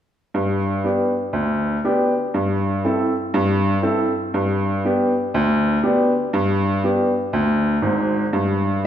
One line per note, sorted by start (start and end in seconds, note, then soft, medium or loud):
0.34 0.76 G2 medium
0.84 1.11 B3 soft
0.84 1.12 D4 soft
0.84 1.12 G4 soft
1.33 1.76 D2 medium
1.84 2.12 B3 soft
1.84 2.12 D4 soft
1.84 2.12 G4 soft
2.34 2.76 G2 medium
2.85 3.12 C4 soft
2.85 3.12 E4 soft
2.85 3.12 A4 soft
3.34 3.76 G2 medium
3.82 4.10 C4 soft
3.82 4.10 E4 soft
3.82 4.11 A4 medium
4.34 4.76 G2 medium
4.85 5.12 B3 soft
4.85 5.12 D4 soft
4.85 5.12 G4 soft
5.34 5.76 D2 medium
5.83 6.11 B3 soft
5.83 6.11 D4 medium
5.83 6.11 G4 medium
6.33 6.76 G2 medium
6.84 7.11 B3 soft
6.84 7.11 D4 soft
6.84 7.11 G4 soft
7.33 7.75 D2 medium
7.82 8.23 G#1 medium
7.82 8.22 G#2 medium
8.33 8.75 G2 medium